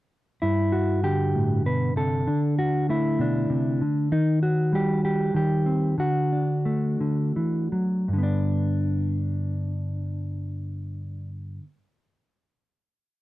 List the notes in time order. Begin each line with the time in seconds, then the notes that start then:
0.42 G2 E4
0.72 F#4
1.03 D3 G4
1.35 A2
1.66 B2 B4
1.96 C3 A4
2.27 D3 D4
2.59 F#4
2.89 A3 E4
3.19 B2 D4
3.50 C3
3.81 D3
4.12 D#3 D#4
4.43 F#4
4.73 G3 G4
5.05 G4
5.34 D#3 G4
5.66 C4
5.98 D3 F#4
6.33 D4
6.65 A3
7.00 D3
7.36 E3
7.72 F#3
8.08 G2
8.13 D3
8.18 B3
8.23 D4